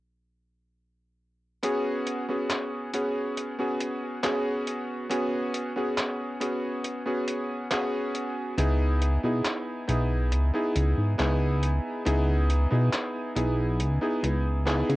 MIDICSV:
0, 0, Header, 1, 4, 480
1, 0, Start_track
1, 0, Tempo, 869565
1, 900, Time_signature, 4, 2, 24, 8
1, 8258, End_track
2, 0, Start_track
2, 0, Title_t, "Electric grand piano"
2, 0, Program_c, 0, 2
2, 896, Note_on_c, 0, 59, 80
2, 898, Note_on_c, 0, 61, 79
2, 902, Note_on_c, 0, 66, 77
2, 905, Note_on_c, 0, 68, 96
2, 1232, Note_off_c, 0, 59, 0
2, 1233, Note_off_c, 0, 61, 0
2, 1234, Note_off_c, 0, 66, 0
2, 1236, Note_off_c, 0, 68, 0
2, 1259, Note_on_c, 0, 59, 65
2, 1262, Note_on_c, 0, 61, 57
2, 1265, Note_on_c, 0, 66, 57
2, 1267, Note_on_c, 0, 68, 72
2, 1590, Note_off_c, 0, 59, 0
2, 1592, Note_off_c, 0, 61, 0
2, 1593, Note_off_c, 0, 66, 0
2, 1594, Note_off_c, 0, 68, 0
2, 1617, Note_on_c, 0, 59, 67
2, 1619, Note_on_c, 0, 61, 58
2, 1621, Note_on_c, 0, 66, 60
2, 1624, Note_on_c, 0, 68, 73
2, 1952, Note_off_c, 0, 59, 0
2, 1953, Note_off_c, 0, 61, 0
2, 1954, Note_off_c, 0, 66, 0
2, 1956, Note_off_c, 0, 68, 0
2, 1978, Note_on_c, 0, 59, 68
2, 1981, Note_on_c, 0, 61, 62
2, 1983, Note_on_c, 0, 66, 63
2, 1985, Note_on_c, 0, 68, 76
2, 2310, Note_off_c, 0, 59, 0
2, 2311, Note_off_c, 0, 61, 0
2, 2312, Note_off_c, 0, 66, 0
2, 2313, Note_off_c, 0, 68, 0
2, 2334, Note_on_c, 0, 59, 84
2, 2336, Note_on_c, 0, 61, 80
2, 2339, Note_on_c, 0, 66, 81
2, 2342, Note_on_c, 0, 68, 92
2, 2789, Note_off_c, 0, 59, 0
2, 2790, Note_off_c, 0, 61, 0
2, 2792, Note_off_c, 0, 66, 0
2, 2793, Note_off_c, 0, 68, 0
2, 2814, Note_on_c, 0, 59, 82
2, 2817, Note_on_c, 0, 61, 78
2, 2820, Note_on_c, 0, 66, 77
2, 2822, Note_on_c, 0, 68, 93
2, 3150, Note_off_c, 0, 59, 0
2, 3152, Note_off_c, 0, 61, 0
2, 3153, Note_off_c, 0, 66, 0
2, 3155, Note_off_c, 0, 68, 0
2, 3178, Note_on_c, 0, 59, 66
2, 3181, Note_on_c, 0, 61, 60
2, 3185, Note_on_c, 0, 66, 60
2, 3187, Note_on_c, 0, 68, 73
2, 3510, Note_off_c, 0, 59, 0
2, 3511, Note_off_c, 0, 61, 0
2, 3513, Note_off_c, 0, 66, 0
2, 3514, Note_off_c, 0, 68, 0
2, 3535, Note_on_c, 0, 59, 64
2, 3537, Note_on_c, 0, 61, 60
2, 3540, Note_on_c, 0, 66, 61
2, 3543, Note_on_c, 0, 68, 71
2, 3871, Note_off_c, 0, 59, 0
2, 3872, Note_off_c, 0, 61, 0
2, 3873, Note_off_c, 0, 66, 0
2, 3875, Note_off_c, 0, 68, 0
2, 3896, Note_on_c, 0, 59, 70
2, 3898, Note_on_c, 0, 61, 62
2, 3901, Note_on_c, 0, 66, 62
2, 3904, Note_on_c, 0, 68, 79
2, 4228, Note_off_c, 0, 59, 0
2, 4229, Note_off_c, 0, 61, 0
2, 4231, Note_off_c, 0, 66, 0
2, 4232, Note_off_c, 0, 68, 0
2, 4254, Note_on_c, 0, 59, 84
2, 4258, Note_on_c, 0, 61, 80
2, 4260, Note_on_c, 0, 66, 79
2, 4263, Note_on_c, 0, 68, 95
2, 4709, Note_off_c, 0, 59, 0
2, 4711, Note_off_c, 0, 61, 0
2, 4712, Note_off_c, 0, 66, 0
2, 4713, Note_off_c, 0, 68, 0
2, 4734, Note_on_c, 0, 59, 84
2, 4737, Note_on_c, 0, 63, 80
2, 4740, Note_on_c, 0, 64, 78
2, 4742, Note_on_c, 0, 68, 97
2, 5071, Note_off_c, 0, 59, 0
2, 5072, Note_off_c, 0, 63, 0
2, 5074, Note_off_c, 0, 64, 0
2, 5075, Note_off_c, 0, 68, 0
2, 5097, Note_on_c, 0, 59, 68
2, 5101, Note_on_c, 0, 63, 62
2, 5103, Note_on_c, 0, 64, 61
2, 5106, Note_on_c, 0, 68, 71
2, 5429, Note_off_c, 0, 59, 0
2, 5431, Note_off_c, 0, 63, 0
2, 5432, Note_off_c, 0, 64, 0
2, 5434, Note_off_c, 0, 68, 0
2, 5451, Note_on_c, 0, 59, 68
2, 5454, Note_on_c, 0, 63, 67
2, 5458, Note_on_c, 0, 64, 64
2, 5459, Note_on_c, 0, 68, 75
2, 5789, Note_off_c, 0, 59, 0
2, 5791, Note_off_c, 0, 63, 0
2, 5792, Note_off_c, 0, 64, 0
2, 5793, Note_off_c, 0, 68, 0
2, 5816, Note_on_c, 0, 59, 72
2, 5819, Note_on_c, 0, 63, 62
2, 5822, Note_on_c, 0, 64, 69
2, 5824, Note_on_c, 0, 68, 80
2, 6148, Note_off_c, 0, 59, 0
2, 6150, Note_off_c, 0, 63, 0
2, 6152, Note_off_c, 0, 64, 0
2, 6152, Note_off_c, 0, 68, 0
2, 6172, Note_on_c, 0, 59, 92
2, 6175, Note_on_c, 0, 63, 82
2, 6178, Note_on_c, 0, 64, 80
2, 6180, Note_on_c, 0, 68, 96
2, 6628, Note_off_c, 0, 59, 0
2, 6629, Note_off_c, 0, 63, 0
2, 6631, Note_off_c, 0, 64, 0
2, 6632, Note_off_c, 0, 68, 0
2, 6652, Note_on_c, 0, 59, 91
2, 6654, Note_on_c, 0, 63, 79
2, 6658, Note_on_c, 0, 64, 82
2, 6660, Note_on_c, 0, 68, 96
2, 6989, Note_off_c, 0, 59, 0
2, 6991, Note_off_c, 0, 63, 0
2, 6992, Note_off_c, 0, 64, 0
2, 6994, Note_off_c, 0, 68, 0
2, 7013, Note_on_c, 0, 59, 70
2, 7016, Note_on_c, 0, 63, 61
2, 7018, Note_on_c, 0, 64, 61
2, 7022, Note_on_c, 0, 68, 76
2, 7347, Note_off_c, 0, 59, 0
2, 7348, Note_off_c, 0, 63, 0
2, 7350, Note_off_c, 0, 64, 0
2, 7352, Note_off_c, 0, 68, 0
2, 7372, Note_on_c, 0, 59, 68
2, 7374, Note_on_c, 0, 63, 65
2, 7378, Note_on_c, 0, 64, 63
2, 7381, Note_on_c, 0, 68, 78
2, 7710, Note_off_c, 0, 59, 0
2, 7711, Note_off_c, 0, 63, 0
2, 7712, Note_off_c, 0, 64, 0
2, 7714, Note_off_c, 0, 68, 0
2, 7735, Note_on_c, 0, 59, 72
2, 7737, Note_on_c, 0, 63, 67
2, 7739, Note_on_c, 0, 64, 67
2, 7743, Note_on_c, 0, 68, 80
2, 8068, Note_off_c, 0, 59, 0
2, 8069, Note_off_c, 0, 63, 0
2, 8070, Note_off_c, 0, 64, 0
2, 8072, Note_off_c, 0, 68, 0
2, 8090, Note_on_c, 0, 59, 90
2, 8092, Note_on_c, 0, 63, 80
2, 8096, Note_on_c, 0, 64, 78
2, 8099, Note_on_c, 0, 68, 101
2, 8258, Note_off_c, 0, 59, 0
2, 8258, Note_off_c, 0, 63, 0
2, 8258, Note_off_c, 0, 64, 0
2, 8258, Note_off_c, 0, 68, 0
2, 8258, End_track
3, 0, Start_track
3, 0, Title_t, "Analog synth bass"
3, 0, Program_c, 1, 38
3, 4736, Note_on_c, 1, 37, 92
3, 5069, Note_off_c, 1, 37, 0
3, 5100, Note_on_c, 1, 47, 100
3, 5200, Note_off_c, 1, 47, 0
3, 5456, Note_on_c, 1, 35, 81
3, 5698, Note_on_c, 1, 37, 98
3, 5706, Note_off_c, 1, 35, 0
3, 5802, Note_off_c, 1, 37, 0
3, 5938, Note_on_c, 1, 37, 83
3, 6042, Note_off_c, 1, 37, 0
3, 6059, Note_on_c, 1, 44, 78
3, 6159, Note_off_c, 1, 44, 0
3, 6179, Note_on_c, 1, 37, 91
3, 6511, Note_off_c, 1, 37, 0
3, 6659, Note_on_c, 1, 37, 93
3, 6991, Note_off_c, 1, 37, 0
3, 7021, Note_on_c, 1, 47, 98
3, 7120, Note_off_c, 1, 47, 0
3, 7376, Note_on_c, 1, 35, 85
3, 7617, Note_on_c, 1, 37, 99
3, 7625, Note_off_c, 1, 35, 0
3, 7722, Note_off_c, 1, 37, 0
3, 7855, Note_on_c, 1, 37, 81
3, 8189, Note_off_c, 1, 37, 0
3, 8220, Note_on_c, 1, 49, 85
3, 8258, Note_off_c, 1, 49, 0
3, 8258, End_track
4, 0, Start_track
4, 0, Title_t, "Drums"
4, 900, Note_on_c, 9, 42, 68
4, 955, Note_off_c, 9, 42, 0
4, 1139, Note_on_c, 9, 42, 60
4, 1195, Note_off_c, 9, 42, 0
4, 1379, Note_on_c, 9, 39, 99
4, 1379, Note_on_c, 9, 42, 69
4, 1435, Note_off_c, 9, 39, 0
4, 1435, Note_off_c, 9, 42, 0
4, 1618, Note_on_c, 9, 42, 64
4, 1674, Note_off_c, 9, 42, 0
4, 1860, Note_on_c, 9, 42, 70
4, 1915, Note_off_c, 9, 42, 0
4, 2099, Note_on_c, 9, 42, 63
4, 2155, Note_off_c, 9, 42, 0
4, 2340, Note_on_c, 9, 39, 99
4, 2340, Note_on_c, 9, 42, 75
4, 2395, Note_off_c, 9, 39, 0
4, 2395, Note_off_c, 9, 42, 0
4, 2580, Note_on_c, 9, 42, 59
4, 2635, Note_off_c, 9, 42, 0
4, 2820, Note_on_c, 9, 42, 73
4, 2875, Note_off_c, 9, 42, 0
4, 3059, Note_on_c, 9, 42, 63
4, 3114, Note_off_c, 9, 42, 0
4, 3300, Note_on_c, 9, 39, 111
4, 3300, Note_on_c, 9, 42, 77
4, 3355, Note_off_c, 9, 39, 0
4, 3355, Note_off_c, 9, 42, 0
4, 3539, Note_on_c, 9, 42, 61
4, 3595, Note_off_c, 9, 42, 0
4, 3778, Note_on_c, 9, 42, 70
4, 3833, Note_off_c, 9, 42, 0
4, 4017, Note_on_c, 9, 42, 64
4, 4072, Note_off_c, 9, 42, 0
4, 4257, Note_on_c, 9, 39, 104
4, 4257, Note_on_c, 9, 42, 71
4, 4312, Note_off_c, 9, 39, 0
4, 4312, Note_off_c, 9, 42, 0
4, 4497, Note_on_c, 9, 42, 58
4, 4553, Note_off_c, 9, 42, 0
4, 4737, Note_on_c, 9, 42, 74
4, 4793, Note_off_c, 9, 42, 0
4, 4979, Note_on_c, 9, 42, 61
4, 5034, Note_off_c, 9, 42, 0
4, 5218, Note_on_c, 9, 39, 110
4, 5218, Note_on_c, 9, 42, 70
4, 5273, Note_off_c, 9, 39, 0
4, 5273, Note_off_c, 9, 42, 0
4, 5459, Note_on_c, 9, 42, 63
4, 5514, Note_off_c, 9, 42, 0
4, 5697, Note_on_c, 9, 42, 72
4, 5752, Note_off_c, 9, 42, 0
4, 5938, Note_on_c, 9, 42, 63
4, 5993, Note_off_c, 9, 42, 0
4, 6179, Note_on_c, 9, 39, 116
4, 6179, Note_on_c, 9, 42, 70
4, 6235, Note_off_c, 9, 39, 0
4, 6235, Note_off_c, 9, 42, 0
4, 6418, Note_on_c, 9, 42, 62
4, 6473, Note_off_c, 9, 42, 0
4, 6659, Note_on_c, 9, 42, 71
4, 6714, Note_off_c, 9, 42, 0
4, 6898, Note_on_c, 9, 42, 62
4, 6954, Note_off_c, 9, 42, 0
4, 7138, Note_on_c, 9, 39, 109
4, 7138, Note_on_c, 9, 42, 71
4, 7193, Note_off_c, 9, 39, 0
4, 7193, Note_off_c, 9, 42, 0
4, 7378, Note_on_c, 9, 42, 61
4, 7433, Note_off_c, 9, 42, 0
4, 7617, Note_on_c, 9, 42, 68
4, 7673, Note_off_c, 9, 42, 0
4, 7859, Note_on_c, 9, 42, 62
4, 7914, Note_off_c, 9, 42, 0
4, 8099, Note_on_c, 9, 39, 115
4, 8099, Note_on_c, 9, 42, 69
4, 8154, Note_off_c, 9, 39, 0
4, 8154, Note_off_c, 9, 42, 0
4, 8224, Note_on_c, 9, 42, 35
4, 8258, Note_off_c, 9, 42, 0
4, 8258, End_track
0, 0, End_of_file